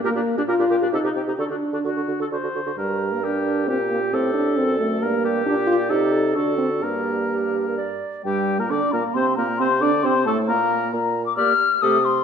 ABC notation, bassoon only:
X:1
M:3/4
L:1/16
Q:1/4=134
K:Gm
V:1 name="Bassoon" clef=bass
B,, B,, z B,, B,, B,, B,, B,, C, C, C, C, | D, D, z D, D, D, D, D, D, D, D, D, | G,,8 B,,4 | A,,4 ^F,,4 G,,4 |
B,,4 C,4 D,4 | G,,8- G,,2 z2 | G,,3 B,, D,2 B,,2 C,2 B,,2 | C,2 D,2 C,2 A,,2 B,,4 |
B,,3 z4 z C,3 z |]